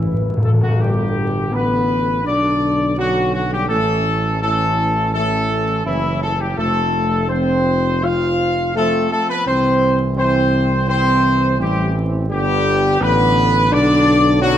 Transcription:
Already playing: A1 E3 E4
0.02 A2 B4
0.13 A2
0.21 A2
0.29 A2
0.37 A2
0.41 A2 A3 A4
0.53 A2
0.61 A2 F#3 F#4
0.68 A2
0.78 G1 D3 G3 B3 G4
1.51 A1 D3 B3 B4
2.24 B1 D3 D4 D5
2.97 D3 F#3 C#4 F#4
3.34 F#3 F#4
3.52 G3 G4
3.69 A1 E3 A3 C#4 A4
4.41 E3 A3 C#4 A4
5.13 E3 A3 C#4 A4
5.85 F#1 E3 C#4 E4
6.21 A3 A4
6.39 G3 G4
6.56 F1 F3 A3 C4 A4
7.29 F3 C4 C5
8.02 F3 C4 F4 F5
8.75 F3 A3 C4 A4
9.11 A3 A4
9.29 B3 B4
9.45 C2 E3 C4 C5
10.17 E3 C4 C5
10.88 E3 C4 C5
11.58 A1 E3 G3 C4 G4
12.29 G1 D3 G3 B3 G4
13.00 A1 D3 B3 B4
13.71 B1 D3 D4 D5
14.41 D3 F#3 C#4 F#4

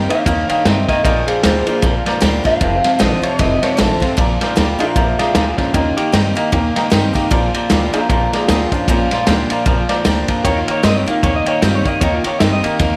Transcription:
Already playing: D#3 D#4
0.09 D#3 A#3 D#4 G4 C#5 D#5 F5 G5 A#5, muted upright bass stroke, ride
0.25 D#2 G2 D#3 A#3 C#5 D#5 F5 G5 A#5, kick, ride
0.48 D#3 A#3 C#5 D#5 F5 G5 A#5, muted upright bass stroke, ride
0.64 G2 C3 D#3 C4 A#4 D#5 G5 A#5, snare, ride
0.88 D#3 A#3 A#4 D#5 G5 A#5, muted upright bass stroke, kick, snare, ride
1.04 A#1 A#2 F3 A#4 D5 D#5 F5 A#5, kick, ride
1.27 A#2 F3 G#4 C5 D5 F5 A#5, muted upright bass stroke, ride
1.43 D2 A#2 F3 G3 A#3 D4 F4 G#4 C5 D5 F5 A#5, snare, ride
1.66 A#2 F3 D4 F4 G#4 C5 D5 F5 A#5, muted upright bass stroke, ride
1.82 A#1 F2 A#2 F3 A#4 D5 F5 A#5, kick, snare, ride
2.06 A#2 F3 D5 F5 A#5, muted upright bass stroke, snare, ride
2.20 D2 A#2 F3 G3 A#3 D4 F4 D5 F5 A#5, snare, ride
2.44 A#2 F3 D4 F4 D5 F5 A#5, muted upright bass stroke, kick, snare, ride
2.61 F1 F2 C3 C5 F5 A5, kick, ride
2.84 F2 C3 C5 F5 A5, muted upright bass stroke, snare, ride
2.99 A1 F2 D3 F3 A3 C4 F4 C5 D#5 F5 A5, snare, ride
3.22 F2 C3 C4 F4 C5 C#5 F5 A5, muted upright bass stroke, ride
3.39 F1 F2 C3 C5 D#5 F5 A5, kick, snare, ride
3.62 F2 C3 C5 C#5 F5 A5, muted upright bass stroke, snare, ride
3.77 A1 F2 D3 F3 A3 C4 F4 A4 C5 F5 A5, snare, ride
4.00 F2 C3 C4 F4 C5 F5 A5, muted upright bass stroke, kick, snare, ride
4.17 A#1 A#2 F3 D5 F5 A#5, kick, ride
4.41 A#2 F3 D5 F5 A#5, muted upright bass stroke, snare, ride
4.56 D2 A#2 F3 G3 A#3 D4 F4 D5 F5 A#5, snare, ride
4.79 A#2 F3 D4 F4 A#4 D5 F5 A#5, muted upright bass stroke, ride
4.95 A#1 A#2 C3 F3 F4 A#4 D5 F5 A#5, kick, ride
5.19 A#2 F3 F4 G#4 D5 F5 A#5, muted upright bass stroke, snare, ride
5.34 D2 A#2 D3 G3 F4 G#4 D5 F5 A#5, snare, ride
5.57 A#2 F3 C#4 F4 D5 F5 A#5, muted upright bass stroke, kick, snare, ride
5.74 D#2 D#3 A#3 C#4 F4 D#5 G5 A#5, kick, ride
5.97 D#3 A#3 G4 D#5 G5 A#5, muted upright bass stroke, ride
6.12 G2 D#3 G3 A#3 C4 D#4 G4 D#5 G5 A#5, snare, ride
6.35 D#3 A#3 D#4 G4 D#5 G5 A#5, muted upright bass stroke, ride
6.52 D#2 A#2 D#3 A#3 D#5 G5 A#5, kick, ride
6.75 D#3 A#3 D#5 G5 A#5, muted upright bass stroke, snare, ride
6.90 G2 D#3 G3 A#3 C4 D#4 G4 D#5 G5 A#5, snare, ride
7.13 D#3 A#3 D#4 G4 D#5 G5 A#5, muted upright bass stroke, kick, snare, ride
7.31 A#1 A#2 F3 D5 F5 A#5, kick, ride
7.54 A#2 F3 D5 F5 A#5, muted upright bass stroke, ride
7.70 D2 A#2 F3 G3 A#3 D4 F4 D5 F5 A#5, snare, ride
7.93 A#2 F3 D4 F4 A#4 D5 F5 A#5, muted upright bass stroke, ride
8.09 A#1 F2 A#2 F3 F4 A#4 D5 F5 A#5, kick, ride
8.32 A#2 F3 F4 G#4 D5 F5 A#5, muted upright bass stroke, snare, ride
8.48 D2 A#2 F3 G3 A#3 D4 F4 G#4 D5 F5 A#5, snare, ride
8.72 A#2 F3 C#4 D4 F4 D5 F5 A#5, kick, ride
8.88 A#1 A#2 F3 C#4 F4 D5 F5 A#5, kick, ride
9.11 A#2 F3 F4 D5 F5 A#5, muted upright bass stroke, snare, ride
9.27 D2 A#2 F3 G3 A#3 D4 F4 D5 F5 A#5, snare, ride
9.50 A#2 F3 D4 F4 D5 F5 A#5, muted upright bass stroke, ride
9.66 A#1 F2 A#2 F3 D5 F5 A#5, kick, ride
9.89 A#2 F3 D5 F5 A#5, muted upright bass stroke, snare, ride
10.05 D2 A#2 F3 G3 A#3 D4 F4 D5 F5 A#5, snare, ride
10.28 A#2 F3 D5 F5 A#5, muted upright bass stroke, kick, ride
10.44 D#2 D#3 A#3 C#5 D#5 G5 A#5, kick, ride
10.58 F4
10.68 D#3 A#3 C#5 D#5 G5 A#5, muted upright bass stroke, ride
10.83 G2 D#3 G3 A#3 C4 D#4 G4 D#5 G5 C6, snare, ride
10.97 C#5
11.06 D#3 A#3 D#4 F4 G4 D#5 G5 A#5, muted upright bass stroke, ride
11.23 D#2 A#2 D#3 A#3 C#5 D#5 G5 A#5, kick, ride
11.36 D#5
11.46 D#3 A#3 C#5 D#5 G5 A#5, muted upright bass stroke, ride
11.61 G2 D#3 G3 A#3 C4 D#4 F4 G4 D#5 G5 A#5, snare, ride
11.75 C#5
11.84 D#3 A#3 D#4 G4 D#5 G5 A#5, kick, ride
12.01 D#2 D#3 A#3 C#5 D#5 G5 A#5, kick, ride
12.13 F4
12.24 D#3 A#3 C#5 D#5 G5 A#5, muted upright bass stroke, ride
12.39 G2 D#3 G3 A#3 C4 D#4 G4 D#5 G5 A#5, snare, ride
12.52 D#5
12.63 D#3 A#3 D#4 G4 D#5 G5 A#5, muted upright bass stroke, ride
12.79 D#2 A#2 D#3 A#3 D#5 G5 A#5, kick, snare, ride

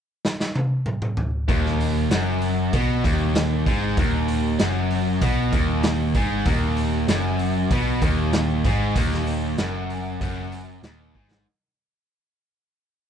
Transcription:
0.25 snare
0.40 snare
0.55 high tom
0.86 mid tom
1.02 mid tom
1.17 floor tom
1.48 D#1 D#2, kick, open hi-hat
1.66 snare
1.80 open hi-hat
2.10 F#1 F#2, snare, open hi-hat
2.42 open hi-hat
2.73 B1 B2, kick, open hi-hat
3.04 D#1 D#2, kick, open hi-hat
3.35 snare, open hi-hat
3.66 G#1 G#2, kick, open hi-hat
3.97 D#1 D#2, kick, open hi-hat
4.28 open hi-hat
4.59 F#1 F#2, snare, open hi-hat
4.90 open hi-hat
5.21 B1 B2, kick, open hi-hat
5.52 D#1 D#2, kick, open hi-hat
5.83 snare, open hi-hat
6.14 G#1 G#2, kick, open hi-hat
6.45 D#1 D#2, kick, open hi-hat
6.76 open hi-hat
7.08 F#1 F#2, snare, open hi-hat
7.39 open hi-hat
7.70 B1 B2, kick, open hi-hat
8.01 D#1 D#2, kick, open hi-hat
8.33 snare, open hi-hat
8.64 G#1 G#2, kick, open hi-hat
8.96 D#1 D#2, kick, open hi-hat
9.12 snare
9.27 open hi-hat
9.58 F#1 F#2, snare, open hi-hat
9.90 open hi-hat
10.21 F#1 F#2, kick, open hi-hat
10.52 open hi-hat
10.83 D#1 D#2, snare, open hi-hat
11.15 G#1 G#2, kick
11.32 snare

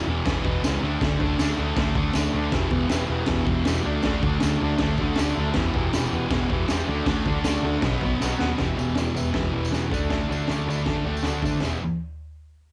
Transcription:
0.07 E1 E2 B2 E3
0.26 E1 E2 B2 E3, kick, snare, crash
0.44 E1 E2 B2 E3, kick
0.63 C#2 E2 B2 E3, snare, tambourine, crash
0.82 D2 D3 A3 D4
1.01 D2 D3 A3 D4, kick, snare, crash
1.19 D2 D3 A3 D4, kick
1.38 D2 D3 A3 D4, snare, tambourine, crash
1.57 D2 D3 A3 D4
1.76 D2 D3 A3 D4, kick, snare, crash
1.95 D2 D3 A3 D4, kick
2.13 D2 D3 A3 D4, snare, tambourine, crash
2.33 D2 D3 A3 D4
2.52 E1 E2 B2 E3 G4 B4 E5, kick, snare, crash
2.71 E1 E2 B2 E3 G4 B4 E5, kick
2.89 E1 E2 B2 E3 G4 B4 E5, snare, tambourine, crash
3.08 E1 E2 B2 E3 G4 B4
3.12 F#5
3.26 E1 E2 B2 E3 G4 B4 E5, kick, snare, crash
3.47 E1 E2 B2 E3 G4 B4 E5, kick
3.65 E1 E2 B2 E3 G4, snare, tambourine, crash
3.70 B4 E5
3.84 D2 D3 A3 D4 F#4 A4 D5
4.03 D2 D3 A3 D4, kick, snare, crash
4.22 D2 D3 A3 D4 F#4 A4 D5, kick
4.40 D2 D3 A3 D4 F#4 A4, snare, tambourine, crash
4.45 D5
4.61 D2 D3 A3 D4 F#4 A4 D5
4.78 D2 D3 A3 F#4 A4 C5, kick, snare, crash
4.82 D4
4.98 D2 D3 A3 D4 F#4 A4, kick
5.03 D5
5.15 D2 D3 F#4 A4 D5, snare, tambourine, crash
5.20 A3 D4
5.34 D2 D3 F#4 A4 E5
5.39 A3 D4
5.53 E1 E2 G4 B4 E5, kick, snare, crash
5.57 B2 E3
5.74 E1 E2 B2 E3 G4 B4 E5, kick
5.93 E1 E2 B2 E3 G4 B4, snare, tambourine, crash
5.97 G5
6.12 E1 E2 B2 E3 G4 B4 F#5
6.30 E1 E2 B2 E3 G4 B4 F#5, kick, snare, crash
6.50 E1 E2 B2 E3 G4 B4 E5, kick
6.68 E2 B2 G4 B4 G5, snare, tambourine, crash
6.73 E3
6.88 D2 D3 A3 D4 F#4 A4 D5
7.06 D2 D3 A3 D4, kick, snare, crash
7.25 D2 D3 A3 D4 F#4 A4 D5, kick
7.42 D2 D3 F#4 A4 D5, snare, tambourine, crash
7.47 A3 D4
7.61 D2 D3 F#4 A4 D5
7.65 A3 D4
7.80 B1 B2 F#4 B4 D#5, kick, snare, crash
7.85 F#3 B3
7.99 B1 B2 F#4 B4 D#5, kick
8.03 F#3 B3
8.20 B1 B2 F#3 F#4 B4 D#5, snare, tambourine
8.24 B3
8.39 D#2 B2 F#3 B3 F#4 B4 F#5, snare
8.58 E1 E2 B2 E3 G4 B4 E5, kick, snare, floor tom, tambourine
8.77 E1 E2 B2 E3 G4 B4 E5, floor tom, tambourine
8.89 tambourine
8.95 E1 E2 B2 E3 G4 B4 D5, snare, floor tom, tambourine
9.08 tambourine
9.15 E1 E2 B2 E3 G4 B4 E5, floor tom, tambourine
9.27 tambourine
9.33 E1 E2 B2 E3 G4 B4 E5, kick, snare, floor tom
9.53 E1 E2 B2 E3 G4 B4 E5, floor tom
9.65 tambourine
9.70 E1 E2 B2 E3 G4 B4 F#5, snare, floor tom
9.74 tambourine
9.90 D2 D3 A3 D4 F#4 A4 D5, kick, floor tom, tambourine
10.10 D2 D3 A3 D4, kick, snare, floor tom, tambourine
10.28 D2 D3 A3 D4 F#4 A4 D5, floor tom
10.32 tambourine
10.45 D3 A3 D4 F#4 A4 D5, snare, floor tom
10.50 D2, tambourine
10.61 F#4, tambourine
10.66 D2 D3 A3 D4 A4 D5 B5, floor tom
10.70 tambourine
10.80 tambourine
10.85 D2 D3 A3 D4 F#4 A4 D5 A5, kick, snare, floor tom
11.04 D2 D3 A3 F#4 A4 D5 G5, floor tom
11.08 D4
11.17 tambourine
11.23 D2 D3 A3 D4 F#4 A4 D5 F#5, snare, floor tom
11.27 tambourine
11.41 D2 D3 A3 D4 F#4 A4 C5 E5, kick, floor tom
11.45 tambourine
11.60 G4 B4 E5, snare, floor tom, splash
11.64 E1 E2 B2 E3, tambourine

